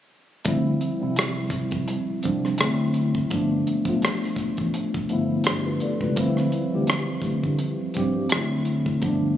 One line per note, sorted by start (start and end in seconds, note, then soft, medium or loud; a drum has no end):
0.45 0.75 D2 medium
0.45 0.86 F3 medium
0.45 0.87 G3 medium
0.45 0.87 C4 medium
0.45 0.88 E4 medium
0.45 kick medium
0.45 closed hi-hat medium
0.81 closed hi-hat medium
0.99 1.86 C2 medium
0.99 1.94 F3 medium
0.99 1.95 G3 medium
0.99 1.96 C4 medium
0.99 1.96 E4 medium
1.16 cross-stick medium
1.16 closed hi-hat medium
1.50 kick medium
1.50 closed hi-hat medium
1.71 kick medium
1.71 closed hi-hat soft
1.88 closed hi-hat medium
2.10 muted fingered electric bass stroke soft
2.23 2.54 C2 medium
2.23 2.59 F3 medium
2.23 2.60 G3 medium
2.23 2.61 C4 medium
2.23 2.61 D4 medium
2.23 kick medium
2.23 closed hi-hat medium
2.45 cross-stick soft
2.58 3.18 F#3 medium
2.58 3.19 A3 medium
2.58 cross-stick loud
2.58 closed hi-hat medium
2.62 3.18 D2 medium
2.62 3.19 C4 medium
2.62 3.19 E4 medium
2.94 closed hi-hat medium
3.15 kick medium
3.30 3.61 G1 medium
3.30 3.72 F3 medium
3.30 3.73 A3 medium
3.30 3.73 B3 medium
3.30 3.74 D4 medium
3.30 kick medium
3.30 closed hi-hat medium
3.67 closed hi-hat medium
3.85 4.00 B1 medium
3.85 4.80 F3 medium
3.85 4.81 A3 medium
3.85 4.81 B3 medium
3.85 4.82 F4 medium
3.85 kick medium
4.02 cross-stick medium
4.02 closed hi-hat medium
4.24 cross-stick soft
4.36 muted fingered electric bass stroke soft
4.36 kick medium
4.36 closed hi-hat medium
4.57 4.72 A1 medium
4.57 kick medium
4.57 closed hi-hat soft
4.74 closed hi-hat medium
4.94 kick medium
5.09 5.40 G1 medium
5.09 5.65 F3 medium
5.09 5.66 A3 medium
5.09 5.66 B3 medium
5.09 5.47 E4 medium
5.09 closed hi-hat medium
5.44 5.65 D4 soft
5.44 5.64 G4 medium
5.44 cross-stick loud
5.44 closed hi-hat medium
5.49 5.76 G1 medium
5.66 5.82 F4 medium
5.66 5.81 B4 medium
5.80 6.00 A4 soft
5.80 6.00 D5 medium
5.80 closed hi-hat medium
6.01 6.15 C#2 medium
6.01 6.35 F4 soft
6.01 6.35 B4 medium
6.01 kick medium
6.16 6.46 D2 loud
6.16 6.58 F3 medium
6.16 6.59 G3 medium
6.16 6.59 C4 medium
6.16 kick loud
6.16 closed hi-hat medium
6.20 6.60 E4 medium
6.37 cross-stick soft
6.52 closed hi-hat medium
6.71 7.03 D2 medium
6.71 6.78 E3 medium
6.71 7.67 G3 medium
6.71 7.67 C4 medium
6.71 7.68 G4 medium
6.78 7.69 F3 medium
6.87 cross-stick loud
6.87 closed hi-hat medium
7.22 7.39 D2 medium
7.22 kick medium
7.22 closed hi-hat medium
7.43 7.58 D3 medium
7.43 kick medium
7.59 closed hi-hat medium
7.82 muted fingered electric bass stroke soft
7.94 8.26 G2 medium
7.94 8.31 F3 medium
7.94 8.31 G3 medium
7.94 8.32 C4 medium
7.94 8.32 G4 medium
7.94 kick medium
7.94 closed hi-hat medium
8.29 9.05 D2 medium
8.29 8.89 F#3 medium
8.29 8.90 A3 medium
8.29 8.90 C4 medium
8.29 cross-stick loud
8.29 closed hi-hat medium
8.34 8.91 E4 medium
8.65 closed hi-hat medium
8.86 kick medium
9.01 9.32 G1 medium
9.01 9.37 F3 medium
9.01 9.37 A3 medium
9.01 9.37 B3 medium
9.01 9.37 D4 loud
9.01 kick loud
9.01 closed hi-hat medium